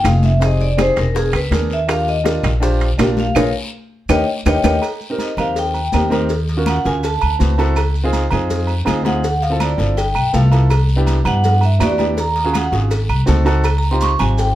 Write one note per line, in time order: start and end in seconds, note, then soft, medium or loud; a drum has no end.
0.03 0.91 F1 loud
0.03 0.30 A#3 medium
0.03 0.30 D#4 medium
0.03 0.30 F4 medium
0.03 0.31 G#4 medium
0.03 0.23 F5 medium
0.03 high bongo soft
0.03 low bongo medium
0.03 high conga medium
0.03 high timbale medium
0.03 short guiro medium
0.03 claves medium
0.03 maracas medium
0.23 0.42 E5 medium
0.23 high conga medium
0.23 short guiro medium
0.23 maracas soft
0.40 0.67 C4 medium
0.40 0.67 D#4 medium
0.40 0.67 G4 medium
0.40 0.67 G#4 medium
0.40 high bongo medium
0.40 high timbale medium
0.40 long guiro medium
0.40 maracas medium
0.45 0.61 D#5 medium
0.60 0.78 D5 medium
0.60 high bongo soft
0.60 high conga soft
0.60 maracas soft
0.77 1.03 C4 medium
0.77 1.04 D#4 medium
0.77 1.04 G4 medium
0.77 1.04 G#4 medium
0.77 0.98 C5 medium
0.77 high bongo medium
0.77 high conga medium
0.77 high timbale medium
0.77 short guiro medium
0.77 claves medium
0.77 maracas medium
0.96 1.31 E1 medium
0.96 1.16 A#4 medium
0.96 high bongo soft
0.96 high conga soft
0.96 high timbale medium
0.96 short guiro medium
0.96 maracas soft
1.15 1.41 B3 medium
1.15 1.41 D4 medium
1.15 1.41 G#4 medium
1.15 1.35 G#4 medium
1.15 1.41 A#4 medium
1.15 high bongo medium
1.15 high conga soft
1.15 long guiro medium
1.15 maracas medium
1.33 1.50 C#2 medium
1.33 1.47 B4 loud
1.33 high bongo soft
1.33 high conga soft
1.33 high timbale medium
1.33 claves medium
1.33 maracas soft
1.51 2.38 D#2 medium
1.51 1.77 B3 medium
1.51 1.77 D4 medium
1.51 1.78 G#4 medium
1.51 1.78 A#4 medium
1.51 high bongo soft
1.51 low bongo medium
1.51 high conga medium
1.51 high timbale medium
1.51 short guiro medium
1.51 maracas medium
1.70 1.90 E5 medium
1.70 high conga soft
1.70 short guiro medium
1.70 maracas soft
1.87 2.14 D4 medium
1.87 2.14 F4 medium
1.87 2.14 G4 medium
1.87 2.15 A#4 medium
1.87 2.08 F5 loud
1.87 high bongo medium
1.87 high conga soft
1.87 high timbale medium
1.87 long guiro medium
1.87 claves medium
1.87 maracas medium
2.07 2.42 D#5 medium
2.07 high bongo soft
2.07 high conga soft
2.07 maracas soft
2.24 2.50 D4 medium
2.24 2.51 F4 medium
2.24 2.51 G4 medium
2.24 2.51 A#4 medium
2.24 high bongo medium
2.24 high conga medium
2.24 high timbale medium
2.24 short guiro medium
2.24 maracas medium
2.43 2.95 A#1 loud
2.43 high bongo soft
2.43 high conga soft
2.43 low conga medium
2.43 high timbale loud
2.43 short guiro medium
2.43 claves medium
2.43 maracas soft
2.60 2.87 D4 loud
2.60 2.88 F4 medium
2.60 2.88 G4 medium
2.60 2.88 C5 loud
2.60 high bongo medium
2.60 high conga soft
2.60 long guiro medium
2.60 maracas medium
2.81 high bongo soft
2.81 high conga soft
2.81 high timbale medium
2.81 maracas soft
2.98 3.33 A#1 loud
2.98 3.24 D4 medium
2.98 3.25 F4 medium
2.98 3.25 G4 medium
2.98 3.25 A#4 loud
2.98 high bongo soft
2.98 low bongo medium
2.98 high conga medium
2.98 high timbale loud
2.98 low timbale medium
2.98 short guiro medium
2.98 claves medium
2.98 maracas medium
3.17 3.36 F5 medium
3.17 high conga medium
3.17 short guiro medium
3.17 maracas soft
3.35 3.49 A#1 loud
3.35 3.48 F4 loud
3.35 3.48 G#4 loud
3.35 3.48 A#4 medium
3.35 3.48 C#5 medium
3.35 3.48 F5 medium
3.35 low bongo loud
3.35 high conga loud
3.35 high timbale loud
3.35 long guiro loud
3.35 claves medium
3.35 maracas loud
4.09 4.23 D#2 loud
4.09 4.21 D#4 loud
4.09 4.21 G4 loud
4.09 4.22 A#4 loud
4.09 4.22 C#5 loud
4.09 4.22 D#5 loud
4.09 4.22 G5 loud
4.09 low bongo loud
4.09 high conga loud
4.09 high timbale loud
4.09 long guiro loud
4.09 claves loud
4.09 maracas loud
4.46 4.60 D#2 loud
4.46 4.58 D#4 loud
4.46 4.58 G4 loud
4.46 4.58 A#4 medium
4.46 4.59 C#5 loud
4.46 4.59 D#5 loud
4.46 4.59 G5 loud
4.46 low bongo loud
4.46 high conga loud
4.46 high timbale loud
4.46 claves medium
4.46 maracas loud
4.64 4.78 D#2 loud
4.64 4.77 D#4 loud
4.64 4.76 G4 loud
4.64 4.76 A#4 loud
4.64 4.77 C#5 medium
4.64 4.77 D#5 medium
4.64 4.77 G5 loud
4.64 low bongo loud
4.64 high conga loud
4.64 high timbale loud
4.64 long guiro loud
4.64 claves loud
4.64 maracas loud
4.82 cowbell loud
4.82 high conga soft
4.82 low agogo loud
4.82 claves medium
4.82 maracas medium
5.01 high conga soft
5.01 maracas soft
5.10 5.30 C4 medium
5.10 5.30 D#4 medium
5.10 5.30 G4 medium
5.10 5.30 A#4 medium
5.18 5.39 D#5 medium
5.18 cowbell medium
5.18 high conga medium
5.18 low agogo medium
5.18 short guiro medium
5.18 maracas medium
5.37 5.89 D#2 medium
5.37 5.76 C4 medium
5.37 5.77 D#4 medium
5.37 5.77 G4 medium
5.37 5.77 A#4 medium
5.37 5.57 F5 loud
5.37 high conga soft
5.37 low conga medium
5.37 low agogo loud
5.37 short guiro medium
5.37 claves medium
5.37 maracas soft
5.56 6.09 G5 medium
5.56 cowbell loud
5.56 high conga soft
5.56 long guiro medium
5.56 maracas medium
5.74 high conga soft
5.74 low agogo medium
5.74 maracas soft
5.92 6.80 D#2 medium
5.92 6.06 C4 medium
5.92 6.06 D#4 medium
5.92 6.07 G4 medium
5.92 6.07 A#4 medium
5.92 cowbell medium
5.92 high conga medium
5.92 low timbale medium
5.92 low agogo loud
5.92 short guiro medium
5.92 claves medium
5.92 maracas medium
6.10 6.29 C4 loud
6.10 6.29 D#4 medium
6.10 6.30 G4 medium
6.10 6.30 A#4 loud
6.10 cowbell medium
6.10 high conga medium
6.10 low agogo medium
6.10 short guiro medium
6.10 maracas soft
6.29 cowbell loud
6.29 long guiro medium
6.29 maracas medium
6.48 cowbell medium
6.48 high conga soft
6.48 maracas soft
6.57 6.77 C#4 medium
6.57 6.77 F4 medium
6.57 6.77 F#4 medium
6.57 6.77 A#4 medium
6.66 6.86 F#5 medium
6.66 cowbell medium
6.66 high conga medium
6.66 low agogo loud
6.66 short guiro medium
6.66 claves medium
6.66 maracas medium
6.85 7.20 D2 medium
6.85 7.03 C#4 medium
6.85 7.04 F4 medium
6.85 7.04 F#4 medium
6.85 7.04 A#4 medium
6.85 7.04 G#5 loud
6.85 cowbell medium
6.85 high conga soft
6.85 short guiro medium
6.85 maracas soft
7.03 7.56 A5 medium
7.03 cowbell loud
7.03 high conga soft
7.03 low agogo medium
7.03 long guiro medium
7.03 maracas medium
7.21 7.40 D2 medium
7.21 high conga soft
7.21 low agogo loud
7.21 claves medium
7.21 maracas soft
7.39 8.27 C#2 loud
7.39 7.53 C4 medium
7.39 7.53 E4 medium
7.39 7.53 F#4 medium
7.39 7.53 B4 medium
7.39 cowbell medium
7.39 high conga medium
7.39 short guiro medium
7.39 maracas medium
7.58 7.77 C4 loud
7.58 7.77 E4 loud
7.58 7.77 F#4 medium
7.58 7.77 A4 loud
7.58 cowbell medium
7.58 low agogo medium
7.58 short guiro medium
7.58 maracas soft
7.76 cowbell loud
7.76 high conga soft
7.76 low agogo loud
7.76 long guiro medium
7.76 claves medium
7.76 maracas medium
7.95 high conga soft
7.95 maracas soft
8.04 8.23 C4 loud
8.04 8.24 D#4 medium
8.04 8.24 F4 medium
8.04 8.24 G#4 loud
8.13 cowbell medium
8.13 high conga medium
8.13 low agogo medium
8.13 short guiro medium
8.13 maracas medium
8.31 8.83 F2 loud
8.31 8.71 C4 medium
8.31 8.71 D#4 medium
8.31 8.71 F4 medium
8.31 8.71 G#4 loud
8.31 high conga soft
8.31 low conga medium
8.31 low agogo loud
8.31 short guiro medium
8.31 claves medium
8.31 maracas soft
8.50 cowbell loud
8.50 high conga soft
8.50 low conga medium
8.50 long guiro medium
8.50 maracas medium
8.67 high conga soft
8.67 low agogo medium
8.67 maracas soft
8.85 9.73 D2 medium
8.85 8.99 C4 medium
8.85 8.99 D#4 medium
8.85 9.00 F4 medium
8.85 9.00 G#4 loud
8.85 cowbell medium
8.85 high conga medium
8.85 low agogo loud
8.85 short guiro medium
8.85 claves medium
8.85 maracas medium
9.03 9.23 C4 medium
9.03 9.23 D#4 medium
9.03 9.24 F4 medium
9.03 9.24 G#4 loud
9.03 9.41 F#5 loud
9.03 cowbell medium
9.03 high conga medium
9.03 low agogo medium
9.03 short guiro medium
9.03 maracas soft
9.24 cowbell loud
9.24 long guiro medium
9.24 maracas medium
9.42 9.60 F5 loud
9.42 cowbell medium
9.42 high conga soft
9.42 maracas soft
9.50 9.70 C4 medium
9.50 9.70 E4 medium
9.50 9.71 F4 medium
9.50 9.71 A4 medium
9.60 9.96 D5 medium
9.60 cowbell medium
9.60 high conga medium
9.60 low agogo loud
9.60 short guiro medium
9.60 claves medium
9.60 maracas medium
9.77 10.13 G1 medium
9.77 9.97 C4 medium
9.77 9.97 E4 medium
9.77 9.97 F4 medium
9.77 9.98 A4 medium
9.77 cowbell medium
9.77 high conga soft
9.77 short guiro medium
9.77 maracas soft
9.97 10.32 G5 loud
9.97 cowbell loud
9.97 high conga soft
9.97 low agogo medium
9.97 long guiro medium
9.97 maracas medium
10.15 10.33 B1 medium
10.15 high conga soft
10.15 low agogo loud
10.15 claves medium
10.15 maracas soft
10.33 11.20 C2 medium
10.33 10.46 B3 medium
10.33 10.47 E4 medium
10.33 10.47 F4 medium
10.33 10.47 A4 medium
10.33 10.53 F5 medium
10.33 cowbell medium
10.33 high conga medium
10.33 short guiro medium
10.33 maracas medium
10.51 10.70 B3 medium
10.51 10.70 E4 medium
10.51 10.71 F4 medium
10.51 10.71 A4 medium
10.51 cowbell medium
10.51 high conga soft
10.51 low agogo medium
10.51 short guiro medium
10.51 maracas soft
10.70 cowbell loud
10.70 high conga soft
10.70 low agogo loud
10.70 long guiro medium
10.70 claves medium
10.70 maracas medium
10.88 high conga soft
10.88 maracas soft
10.96 11.17 B3 medium
10.96 11.17 D4 medium
10.96 11.17 E4 medium
10.96 11.18 G4 loud
11.06 cowbell medium
11.06 high conga medium
11.06 low agogo medium
11.06 short guiro medium
11.06 maracas medium
11.24 11.77 G2 loud
11.24 11.64 B3 medium
11.24 11.64 D4 medium
11.24 11.64 E4 medium
11.24 11.65 G4 medium
11.24 11.61 F#5 loud
11.24 high conga soft
11.24 low conga medium
11.24 low agogo loud
11.24 short guiro medium
11.24 claves medium
11.24 maracas soft
11.44 cowbell loud
11.44 high conga soft
11.44 low conga medium
11.44 long guiro medium
11.44 maracas medium
11.61 11.82 E5 medium
11.61 high conga soft
11.61 low agogo medium
11.61 maracas soft
11.79 12.67 D#2 medium
11.79 11.93 B3 medium
11.79 11.94 D4 medium
11.79 11.94 E4 medium
11.79 11.94 F#4 medium
11.79 12.17 D5 medium
11.79 cowbell medium
11.79 high conga medium
11.79 low timbale medium
11.79 low agogo loud
11.79 short guiro medium
11.79 claves medium
11.79 maracas medium
11.98 12.17 B3 medium
11.98 12.18 D4 medium
11.98 12.18 E4 medium
11.98 12.18 G4 medium
11.98 cowbell medium
11.98 high conga medium
11.98 low agogo medium
11.98 short guiro medium
11.98 maracas soft
12.17 12.53 A#5 loud
12.17 cowbell loud
12.17 high conga soft
12.17 long guiro medium
12.17 maracas medium
12.36 cowbell medium
12.36 high conga soft
12.36 maracas soft
12.44 12.64 C#4 medium
12.44 12.64 F4 medium
12.44 12.65 F#4 medium
12.44 12.65 G#4 loud
12.53 12.67 F#5 loud
12.53 cowbell medium
12.53 high conga loud
12.53 low agogo loud
12.53 short guiro medium
12.53 claves medium
12.53 maracas medium
12.71 13.07 G#1 medium
12.71 12.91 C#4 medium
12.71 12.91 F4 medium
12.71 12.91 F#4 medium
12.71 12.91 G#4 medium
12.71 cowbell medium
12.71 high conga soft
12.71 short guiro medium
12.71 maracas soft
12.91 cowbell loud
12.91 high conga soft
12.91 low agogo medium
12.91 long guiro medium
12.91 maracas medium
13.09 13.27 C2 medium
13.09 high conga soft
13.09 low agogo loud
13.09 claves medium
13.09 maracas soft
13.26 14.15 C#2 loud
13.26 13.40 C4 loud
13.26 13.41 D#4 medium
13.26 13.41 F#4 medium
13.26 13.41 A4 loud
13.26 cowbell medium
13.26 high conga medium
13.26 short guiro medium
13.26 maracas medium
13.44 13.64 C4 loud
13.44 13.64 D#4 medium
13.44 13.65 F#4 loud
13.44 13.65 A4 loud
13.44 cowbell medium
13.44 high conga soft
13.44 low agogo medium
13.44 short guiro medium
13.44 maracas soft
13.64 cowbell loud
13.64 high conga soft
13.64 low agogo loud
13.64 long guiro medium
13.64 claves medium
13.64 maracas medium
13.78 13.90 A#5 medium
13.78 maracas soft
13.85 high conga soft
13.91 14.11 C4 medium
13.91 14.12 D#4 medium
13.91 14.12 F4 medium
13.91 14.12 G4 loud
13.91 14.02 C6 medium
14.01 14.20 C#6 loud
14.01 cowbell medium
14.01 high conga medium
14.01 low agogo medium
14.01 short guiro medium
14.01 maracas medium
14.19 14.55 G#1 medium
14.19 14.55 C4 medium
14.19 14.55 D#4 medium
14.19 14.55 F4 medium
14.19 14.55 G4 medium
14.19 14.38 G#5 loud
14.19 high conga soft
14.19 low conga medium
14.19 low agogo loud
14.19 short guiro medium
14.19 claves medium
14.19 maracas soft
14.38 14.55 G5 medium
14.38 cowbell loud
14.38 high conga soft
14.38 long guiro medium
14.38 maracas medium